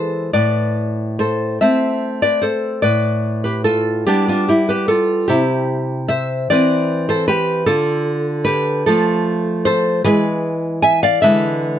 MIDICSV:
0, 0, Header, 1, 2, 480
1, 0, Start_track
1, 0, Key_signature, 0, "minor"
1, 0, Tempo, 853485
1, 194, Time_signature, 6, 3, 24, 8
1, 1145, Tempo, 817439
1, 3065, Tempo, 802139
1, 4025, Tempo, 785340
1, 7008, End_track
2, 0, Start_track
2, 0, Title_t, "Nylon-string guitar"
2, 0, Program_c, 0, 24
2, 0, Note_on_c, 0, 52, 47
2, 0, Note_on_c, 0, 56, 39
2, 0, Note_on_c, 0, 69, 50
2, 0, Note_on_c, 0, 72, 64
2, 170, Note_off_c, 0, 52, 0
2, 170, Note_off_c, 0, 56, 0
2, 176, Note_off_c, 0, 69, 0
2, 179, Note_off_c, 0, 72, 0
2, 188, Note_on_c, 0, 45, 57
2, 188, Note_on_c, 0, 74, 75
2, 191, Note_on_c, 0, 71, 61
2, 650, Note_off_c, 0, 71, 0
2, 652, Note_off_c, 0, 74, 0
2, 670, Note_on_c, 0, 72, 81
2, 675, Note_on_c, 0, 69, 56
2, 888, Note_off_c, 0, 45, 0
2, 896, Note_off_c, 0, 69, 0
2, 900, Note_off_c, 0, 72, 0
2, 905, Note_on_c, 0, 76, 80
2, 908, Note_on_c, 0, 57, 47
2, 911, Note_on_c, 0, 60, 53
2, 913, Note_on_c, 0, 72, 64
2, 1242, Note_off_c, 0, 72, 0
2, 1248, Note_off_c, 0, 76, 0
2, 1254, Note_on_c, 0, 74, 78
2, 1261, Note_on_c, 0, 71, 54
2, 1366, Note_off_c, 0, 71, 0
2, 1369, Note_on_c, 0, 72, 75
2, 1375, Note_on_c, 0, 69, 61
2, 1379, Note_off_c, 0, 74, 0
2, 1598, Note_off_c, 0, 57, 0
2, 1600, Note_off_c, 0, 60, 0
2, 1601, Note_off_c, 0, 69, 0
2, 1605, Note_off_c, 0, 72, 0
2, 1606, Note_on_c, 0, 74, 74
2, 1611, Note_on_c, 0, 45, 63
2, 1614, Note_on_c, 0, 71, 64
2, 1954, Note_off_c, 0, 71, 0
2, 1959, Note_off_c, 0, 74, 0
2, 1969, Note_on_c, 0, 71, 71
2, 1976, Note_on_c, 0, 67, 53
2, 2087, Note_off_c, 0, 71, 0
2, 2089, Note_on_c, 0, 69, 87
2, 2092, Note_off_c, 0, 67, 0
2, 2094, Note_on_c, 0, 65, 62
2, 2319, Note_off_c, 0, 45, 0
2, 2325, Note_off_c, 0, 65, 0
2, 2330, Note_off_c, 0, 69, 0
2, 2336, Note_on_c, 0, 67, 93
2, 2339, Note_on_c, 0, 55, 52
2, 2342, Note_on_c, 0, 59, 52
2, 2345, Note_on_c, 0, 62, 65
2, 2459, Note_off_c, 0, 62, 0
2, 2461, Note_off_c, 0, 67, 0
2, 2463, Note_on_c, 0, 65, 69
2, 2469, Note_on_c, 0, 62, 53
2, 2580, Note_off_c, 0, 65, 0
2, 2582, Note_off_c, 0, 62, 0
2, 2583, Note_on_c, 0, 67, 75
2, 2588, Note_on_c, 0, 64, 63
2, 2699, Note_off_c, 0, 67, 0
2, 2701, Note_off_c, 0, 64, 0
2, 2702, Note_on_c, 0, 71, 81
2, 2708, Note_on_c, 0, 67, 55
2, 2813, Note_off_c, 0, 71, 0
2, 2815, Note_on_c, 0, 69, 81
2, 2820, Note_off_c, 0, 67, 0
2, 2823, Note_on_c, 0, 65, 60
2, 3038, Note_off_c, 0, 55, 0
2, 3039, Note_off_c, 0, 59, 0
2, 3045, Note_off_c, 0, 65, 0
2, 3048, Note_off_c, 0, 69, 0
2, 3049, Note_on_c, 0, 67, 72
2, 3056, Note_on_c, 0, 48, 70
2, 3059, Note_on_c, 0, 64, 60
2, 3517, Note_off_c, 0, 67, 0
2, 3518, Note_off_c, 0, 64, 0
2, 3531, Note_on_c, 0, 76, 94
2, 3538, Note_on_c, 0, 72, 74
2, 3761, Note_off_c, 0, 48, 0
2, 3767, Note_off_c, 0, 72, 0
2, 3770, Note_off_c, 0, 76, 0
2, 3780, Note_on_c, 0, 74, 88
2, 3782, Note_on_c, 0, 52, 58
2, 3787, Note_on_c, 0, 60, 60
2, 3790, Note_on_c, 0, 71, 68
2, 4120, Note_off_c, 0, 71, 0
2, 4126, Note_off_c, 0, 74, 0
2, 4134, Note_on_c, 0, 72, 88
2, 4139, Note_on_c, 0, 69, 66
2, 4247, Note_off_c, 0, 72, 0
2, 4249, Note_on_c, 0, 71, 95
2, 4252, Note_off_c, 0, 69, 0
2, 4258, Note_on_c, 0, 67, 72
2, 4472, Note_off_c, 0, 52, 0
2, 4473, Note_off_c, 0, 60, 0
2, 4478, Note_off_c, 0, 67, 0
2, 4481, Note_off_c, 0, 71, 0
2, 4485, Note_on_c, 0, 69, 91
2, 4486, Note_on_c, 0, 50, 81
2, 4491, Note_on_c, 0, 65, 76
2, 4953, Note_off_c, 0, 65, 0
2, 4955, Note_off_c, 0, 69, 0
2, 4964, Note_on_c, 0, 71, 103
2, 4974, Note_on_c, 0, 67, 74
2, 5202, Note_off_c, 0, 50, 0
2, 5209, Note_off_c, 0, 67, 0
2, 5211, Note_off_c, 0, 71, 0
2, 5218, Note_on_c, 0, 69, 87
2, 5224, Note_on_c, 0, 53, 61
2, 5227, Note_on_c, 0, 57, 64
2, 5229, Note_on_c, 0, 65, 73
2, 5686, Note_off_c, 0, 65, 0
2, 5687, Note_off_c, 0, 69, 0
2, 5701, Note_on_c, 0, 72, 95
2, 5708, Note_on_c, 0, 69, 79
2, 5922, Note_off_c, 0, 53, 0
2, 5923, Note_off_c, 0, 57, 0
2, 5930, Note_off_c, 0, 69, 0
2, 5934, Note_off_c, 0, 72, 0
2, 5940, Note_on_c, 0, 52, 84
2, 5941, Note_on_c, 0, 71, 82
2, 5942, Note_off_c, 0, 52, 0
2, 5942, Note_on_c, 0, 52, 56
2, 5945, Note_on_c, 0, 68, 67
2, 5946, Note_on_c, 0, 56, 59
2, 6399, Note_off_c, 0, 68, 0
2, 6402, Note_off_c, 0, 71, 0
2, 6417, Note_on_c, 0, 80, 103
2, 6425, Note_on_c, 0, 76, 78
2, 6537, Note_off_c, 0, 76, 0
2, 6540, Note_off_c, 0, 80, 0
2, 6542, Note_on_c, 0, 77, 107
2, 6547, Note_on_c, 0, 74, 80
2, 6638, Note_off_c, 0, 52, 0
2, 6640, Note_off_c, 0, 56, 0
2, 6656, Note_off_c, 0, 77, 0
2, 6658, Note_off_c, 0, 74, 0
2, 6658, Note_on_c, 0, 76, 106
2, 6663, Note_on_c, 0, 52, 59
2, 6665, Note_on_c, 0, 50, 83
2, 6668, Note_on_c, 0, 56, 63
2, 6669, Note_on_c, 0, 71, 73
2, 7003, Note_off_c, 0, 71, 0
2, 7008, Note_off_c, 0, 50, 0
2, 7008, Note_off_c, 0, 52, 0
2, 7008, Note_off_c, 0, 56, 0
2, 7008, Note_off_c, 0, 76, 0
2, 7008, End_track
0, 0, End_of_file